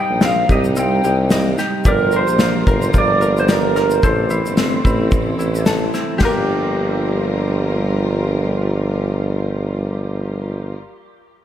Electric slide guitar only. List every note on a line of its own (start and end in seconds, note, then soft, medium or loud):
0.00 0.25 G5 loud
0.25 0.52 F5 medium
0.52 0.59 D#5 medium
0.79 1.29 G5 medium
1.88 2.15 A#4 loud
2.16 2.98 C5 loud
2.98 3.40 D5 loud
3.40 3.44 C5 loud
3.52 4.06 A#4 loud
4.06 5.64 C5 loud
6.22 10.77 G4 medium